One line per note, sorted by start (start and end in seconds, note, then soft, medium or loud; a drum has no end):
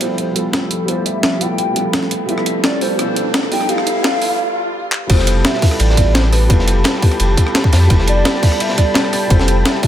0.00 4.35 F3 medium
0.00 0.33 G3 medium
0.00 4.35 A3 medium
0.00 0.34 B3 medium
0.00 0.36 E4 medium
0.00 0.37 F4 medium
0.00 2.26 G4 medium
0.00 0.02 A4 medium
0.00 0.35 A4 medium
0.00 0.17 C5 medium
0.00 4.35 G5 medium
0.00 4.35 B5 medium
0.00 closed hi-hat medium
0.00 riser medium
0.18 0.35 C5 loud
0.18 closed hi-hat medium
0.33 0.84 G3 medium
0.33 0.85 B3 medium
0.33 0.86 E4 medium
0.33 0.44 A4 medium
0.33 closed hi-hat medium
0.37 0.87 F4 medium
0.37 0.88 A4 medium
0.53 0.90 A4 medium
0.53 snare loud
0.53 closed hi-hat medium
0.71 closed hi-hat loud
0.85 1.38 G3 medium
0.85 1.38 B3 medium
0.85 1.39 E4 medium
0.85 1.08 C5 loud
0.85 closed hi-hat medium
0.90 1.40 F4 medium
0.90 1.41 A4 medium
1.06 1.42 E5 loud
1.06 closed hi-hat medium
1.23 snare loud
1.23 closed hi-hat medium
1.40 1.72 G3 medium
1.40 1.73 B3 medium
1.40 1.74 E4 medium
1.40 1.75 F4 medium
1.40 1.75 A4 medium
1.40 1.94 G5 loud
1.40 closed hi-hat medium
1.58 closed hi-hat medium
1.73 2.24 G3 medium
1.73 2.26 B3 medium
1.73 2.27 E4 medium
1.73 closed hi-hat medium
1.78 2.27 F4 medium
1.78 2.28 A4 medium
1.93 snare loud
1.93 closed hi-hat medium
2.03 snare soft
2.11 closed hi-hat medium
2.26 2.78 G3 medium
2.26 2.79 B3 medium
2.26 2.79 E4 medium
2.26 4.37 A4 medium
2.26 2.62 E5 loud
2.26 closed hi-hat medium
2.30 2.80 F4 medium
2.30 2.81 A4 medium
2.38 cross-stick soft
2.46 closed hi-hat medium
2.64 2.83 D5 medium
2.64 snare loud
2.64 closed hi-hat medium
2.80 2.94 G3 medium
2.80 2.97 B3 medium
2.80 2.98 E4 medium
2.80 2.98 F4 medium
2.80 2.98 A4 medium
2.80 2.99 C5 medium
2.80 open hi-hat medium
2.96 3.49 B2 medium
2.96 3.48 G3 medium
2.96 3.50 E4 medium
2.96 3.32 C5 loud
2.96 cross-stick soft
2.96 closed hi-hat medium
3.01 3.50 F4 medium
3.01 3.51 A4 medium
3.16 closed hi-hat medium
3.34 snare loud
3.34 closed hi-hat medium
3.43 cross-stick soft
3.50 3.64 G3 medium
3.50 3.66 B3 medium
3.50 3.68 E4 medium
3.50 3.68 F4 medium
3.50 3.69 A4 medium
3.50 3.71 G5 loud
3.50 open hi-hat medium
3.61 cross-stick soft
3.66 4.00 G3 medium
3.66 4.01 B3 medium
3.66 4.03 G4 medium
3.66 4.75 F5 loud
3.66 closed hi-hat medium
3.71 4.04 F4 medium
3.71 4.04 A4 loud
3.78 cross-stick soft
3.87 closed hi-hat medium
4.01 4.37 G3 medium
4.01 4.37 B3 medium
4.01 4.38 G4 medium
4.01 snare loud
4.01 closed hi-hat medium
4.06 4.39 F4 medium
4.06 4.40 A4 loud
4.22 open hi-hat medium
4.39 swell medium
4.92 clap medium
5.07 5.43 F1 loud
5.07 5.60 B2 medium
5.07 5.59 G3 medium
5.07 5.60 E4 medium
5.07 9.87 G4 medium
5.07 5.46 C5 loud
5.07 9.87 G5 medium
5.07 9.87 A5 medium
5.07 9.87 B5 medium
5.07 kick loud
5.07 closed hi-hat medium
5.07 crash loud
5.07 ride medium
5.12 5.61 F4 medium
5.12 5.62 A4 loud
5.19 snare soft
5.27 closed hi-hat loud
5.27 ride medium
5.44 5.80 E5 loud
5.44 snare loud
5.44 closed hi-hat medium
5.44 ride medium
5.54 snare medium
5.61 5.93 G3 medium
5.61 5.95 B3 medium
5.61 5.95 E4 medium
5.61 5.96 F4 medium
5.61 5.96 A4 medium
5.61 kick loud
5.61 snare soft
5.61 open hi-hat medium
5.71 cross-stick soft
5.79 6.49 A1 medium
5.79 6.14 D5 loud
5.79 closed hi-hat medium
5.79 ride loud
5.90 snare soft
5.94 6.45 G3 medium
5.94 6.47 B3 medium
5.94 6.48 E4 medium
5.94 kick medium
5.94 closed hi-hat loud
5.94 ride medium
5.99 6.49 F4 medium
5.99 6.50 A4 medium
6.14 6.22 C5 medium
6.14 snare loud
6.14 closed hi-hat medium
6.14 ride medium
6.24 cross-stick soft
6.32 6.65 B4 medium
6.32 cross-stick soft
6.32 open hi-hat medium
6.32 ride medium
6.47 6.84 F1 medium
6.47 6.99 G3 medium
6.47 7.00 B3 medium
6.47 7.01 E4 medium
6.47 kick loud
6.47 closed hi-hat medium
6.47 ride medium
6.52 7.01 F4 medium
6.52 7.02 A4 loud
6.59 snare medium
6.68 closed hi-hat medium
6.68 ride medium
6.84 snare loud
6.84 closed hi-hat medium
6.84 ride medium
6.95 snare soft
7.01 7.33 G3 medium
7.01 7.35 B3 medium
7.01 7.36 E4 medium
7.01 7.36 F4 medium
7.01 7.36 A4 medium
7.01 kick loud
7.01 open hi-hat medium
7.01 ride medium
7.11 cross-stick soft
7.11 ride soft
7.19 7.36 F1 loud
7.19 closed hi-hat medium
7.19 ride medium
7.34 7.86 G3 medium
7.34 7.87 B3 medium
7.34 7.88 E4 medium
7.34 kick medium
7.34 closed hi-hat medium
7.34 ride medium
7.39 7.89 F4 medium
7.39 7.90 A4 medium
7.47 cross-stick soft
7.55 snare loud
7.55 closed hi-hat medium
7.55 ride medium
7.64 kick loud
7.72 7.89 F2 loud
7.72 snare loud
7.72 open hi-hat medium
7.72 ride medium
7.82 snare soft
7.87 8.24 F1 medium
7.87 8.39 G3 medium
7.87 8.40 B3 medium
7.87 8.41 E4 medium
7.87 kick loud
7.87 closed hi-hat medium
7.87 ride medium
7.92 8.42 F4 medium
7.92 8.43 A4 medium
7.99 snare soft
8.07 8.63 D5 medium
8.07 closed hi-hat medium
8.07 ride medium
8.25 snare loud
8.25 closed hi-hat medium
8.25 ride medium
8.34 snare medium
8.41 8.74 G3 medium
8.41 8.75 B3 medium
8.41 8.76 E4 medium
8.41 8.76 F4 medium
8.41 8.77 A4 medium
8.41 kick loud
8.41 snare soft
8.41 open hi-hat medium
8.52 cross-stick soft
8.60 8.78 E5 loud
8.60 closed hi-hat medium
8.60 ride medium
8.69 snare medium
8.75 9.26 G3 medium
8.75 9.28 B3 medium
8.75 9.29 E4 medium
8.75 9.32 D5 loud
8.75 kick medium
8.75 closed hi-hat medium
8.75 ride medium
8.80 9.29 F4 medium
8.80 9.30 A4 medium
8.94 snare loud
8.94 closed hi-hat medium
8.94 ride medium
9.04 cross-stick soft
9.13 cross-stick soft
9.13 open hi-hat medium
9.13 ride medium
9.28 9.64 F1 loud
9.28 9.80 G3 medium
9.28 9.81 B3 medium
9.28 9.81 E4 medium
9.28 9.48 C5 loud
9.28 kick loud
9.28 closed hi-hat medium
9.28 ride medium
9.32 9.82 F4 medium
9.32 9.83 A4 medium
9.39 snare soft
9.39 snare medium
9.48 9.56 C5 medium
9.48 closed hi-hat medium
9.48 ride medium
9.65 9.87 E5 loud
9.65 snare loud
9.65 closed hi-hat medium
9.65 ride medium
9.75 snare soft
9.82 9.87 G3 medium
9.82 9.87 B3 medium
9.82 9.87 E4 medium
9.82 9.87 F4 medium
9.82 kick loud
9.82 open hi-hat medium
9.82 ride medium